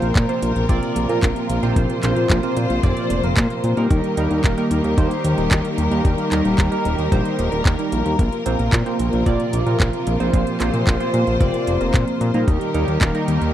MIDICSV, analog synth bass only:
0, 0, Header, 1, 2, 480
1, 0, Start_track
1, 0, Tempo, 535714
1, 1580, Time_signature, 4, 2, 24, 8
1, 12127, End_track
2, 0, Start_track
2, 0, Title_t, "Analog synth bass"
2, 0, Program_c, 0, 38
2, 19, Note_on_c, 0, 34, 80
2, 113, Note_off_c, 0, 34, 0
2, 139, Note_on_c, 0, 46, 100
2, 233, Note_off_c, 0, 46, 0
2, 379, Note_on_c, 0, 34, 88
2, 473, Note_off_c, 0, 34, 0
2, 500, Note_on_c, 0, 34, 79
2, 594, Note_off_c, 0, 34, 0
2, 619, Note_on_c, 0, 34, 98
2, 713, Note_off_c, 0, 34, 0
2, 859, Note_on_c, 0, 34, 91
2, 953, Note_off_c, 0, 34, 0
2, 979, Note_on_c, 0, 46, 81
2, 1073, Note_off_c, 0, 46, 0
2, 1099, Note_on_c, 0, 34, 102
2, 1193, Note_off_c, 0, 34, 0
2, 1339, Note_on_c, 0, 34, 92
2, 1433, Note_off_c, 0, 34, 0
2, 1459, Note_on_c, 0, 34, 76
2, 1553, Note_off_c, 0, 34, 0
2, 1579, Note_on_c, 0, 34, 102
2, 1673, Note_off_c, 0, 34, 0
2, 1819, Note_on_c, 0, 34, 93
2, 1913, Note_off_c, 0, 34, 0
2, 1939, Note_on_c, 0, 46, 78
2, 2033, Note_off_c, 0, 46, 0
2, 2059, Note_on_c, 0, 34, 99
2, 2153, Note_off_c, 0, 34, 0
2, 2299, Note_on_c, 0, 46, 89
2, 2393, Note_off_c, 0, 46, 0
2, 2419, Note_on_c, 0, 34, 82
2, 2513, Note_off_c, 0, 34, 0
2, 2539, Note_on_c, 0, 29, 103
2, 2633, Note_off_c, 0, 29, 0
2, 2779, Note_on_c, 0, 29, 92
2, 2873, Note_off_c, 0, 29, 0
2, 2900, Note_on_c, 0, 29, 82
2, 2994, Note_off_c, 0, 29, 0
2, 3019, Note_on_c, 0, 46, 100
2, 3113, Note_off_c, 0, 46, 0
2, 3260, Note_on_c, 0, 46, 90
2, 3353, Note_off_c, 0, 46, 0
2, 3379, Note_on_c, 0, 46, 79
2, 3473, Note_off_c, 0, 46, 0
2, 3499, Note_on_c, 0, 39, 102
2, 3593, Note_off_c, 0, 39, 0
2, 3739, Note_on_c, 0, 39, 91
2, 3833, Note_off_c, 0, 39, 0
2, 3860, Note_on_c, 0, 39, 82
2, 3954, Note_off_c, 0, 39, 0
2, 3979, Note_on_c, 0, 27, 98
2, 4073, Note_off_c, 0, 27, 0
2, 4219, Note_on_c, 0, 39, 88
2, 4313, Note_off_c, 0, 39, 0
2, 4339, Note_on_c, 0, 39, 79
2, 4433, Note_off_c, 0, 39, 0
2, 4459, Note_on_c, 0, 39, 99
2, 4553, Note_off_c, 0, 39, 0
2, 4698, Note_on_c, 0, 39, 91
2, 4793, Note_off_c, 0, 39, 0
2, 4819, Note_on_c, 0, 27, 82
2, 4913, Note_off_c, 0, 27, 0
2, 4939, Note_on_c, 0, 39, 101
2, 5033, Note_off_c, 0, 39, 0
2, 5178, Note_on_c, 0, 39, 93
2, 5273, Note_off_c, 0, 39, 0
2, 5298, Note_on_c, 0, 39, 77
2, 5393, Note_off_c, 0, 39, 0
2, 5419, Note_on_c, 0, 39, 100
2, 5513, Note_off_c, 0, 39, 0
2, 5658, Note_on_c, 0, 39, 90
2, 5753, Note_off_c, 0, 39, 0
2, 5777, Note_on_c, 0, 27, 80
2, 5872, Note_off_c, 0, 27, 0
2, 5898, Note_on_c, 0, 39, 102
2, 5993, Note_off_c, 0, 39, 0
2, 6138, Note_on_c, 0, 27, 93
2, 6233, Note_off_c, 0, 27, 0
2, 6258, Note_on_c, 0, 39, 81
2, 6353, Note_off_c, 0, 39, 0
2, 6378, Note_on_c, 0, 34, 98
2, 6473, Note_off_c, 0, 34, 0
2, 6619, Note_on_c, 0, 27, 94
2, 6713, Note_off_c, 0, 27, 0
2, 6739, Note_on_c, 0, 27, 82
2, 6833, Note_off_c, 0, 27, 0
2, 6858, Note_on_c, 0, 39, 100
2, 6953, Note_off_c, 0, 39, 0
2, 7100, Note_on_c, 0, 34, 88
2, 7194, Note_off_c, 0, 34, 0
2, 7219, Note_on_c, 0, 39, 78
2, 7313, Note_off_c, 0, 39, 0
2, 7339, Note_on_c, 0, 34, 102
2, 7433, Note_off_c, 0, 34, 0
2, 7581, Note_on_c, 0, 34, 91
2, 7674, Note_off_c, 0, 34, 0
2, 7700, Note_on_c, 0, 34, 83
2, 7794, Note_off_c, 0, 34, 0
2, 7819, Note_on_c, 0, 46, 99
2, 7913, Note_off_c, 0, 46, 0
2, 8061, Note_on_c, 0, 34, 91
2, 8154, Note_off_c, 0, 34, 0
2, 8181, Note_on_c, 0, 34, 79
2, 8274, Note_off_c, 0, 34, 0
2, 8299, Note_on_c, 0, 34, 99
2, 8393, Note_off_c, 0, 34, 0
2, 8541, Note_on_c, 0, 34, 92
2, 8634, Note_off_c, 0, 34, 0
2, 8661, Note_on_c, 0, 46, 82
2, 8754, Note_off_c, 0, 46, 0
2, 8779, Note_on_c, 0, 34, 100
2, 8873, Note_off_c, 0, 34, 0
2, 9021, Note_on_c, 0, 34, 93
2, 9114, Note_off_c, 0, 34, 0
2, 9140, Note_on_c, 0, 34, 77
2, 9234, Note_off_c, 0, 34, 0
2, 9259, Note_on_c, 0, 34, 104
2, 9353, Note_off_c, 0, 34, 0
2, 9501, Note_on_c, 0, 34, 94
2, 9594, Note_off_c, 0, 34, 0
2, 9620, Note_on_c, 0, 46, 80
2, 9714, Note_off_c, 0, 46, 0
2, 9739, Note_on_c, 0, 34, 99
2, 9833, Note_off_c, 0, 34, 0
2, 9980, Note_on_c, 0, 46, 90
2, 10074, Note_off_c, 0, 46, 0
2, 10100, Note_on_c, 0, 34, 83
2, 10194, Note_off_c, 0, 34, 0
2, 10219, Note_on_c, 0, 29, 98
2, 10313, Note_off_c, 0, 29, 0
2, 10460, Note_on_c, 0, 29, 90
2, 10554, Note_off_c, 0, 29, 0
2, 10580, Note_on_c, 0, 29, 83
2, 10674, Note_off_c, 0, 29, 0
2, 10699, Note_on_c, 0, 46, 101
2, 10793, Note_off_c, 0, 46, 0
2, 10939, Note_on_c, 0, 46, 89
2, 11033, Note_off_c, 0, 46, 0
2, 11059, Note_on_c, 0, 46, 77
2, 11153, Note_off_c, 0, 46, 0
2, 11179, Note_on_c, 0, 39, 101
2, 11273, Note_off_c, 0, 39, 0
2, 11419, Note_on_c, 0, 39, 93
2, 11513, Note_off_c, 0, 39, 0
2, 11539, Note_on_c, 0, 39, 80
2, 11633, Note_off_c, 0, 39, 0
2, 11659, Note_on_c, 0, 27, 103
2, 11753, Note_off_c, 0, 27, 0
2, 11899, Note_on_c, 0, 39, 93
2, 11993, Note_off_c, 0, 39, 0
2, 12019, Note_on_c, 0, 39, 81
2, 12113, Note_off_c, 0, 39, 0
2, 12127, End_track
0, 0, End_of_file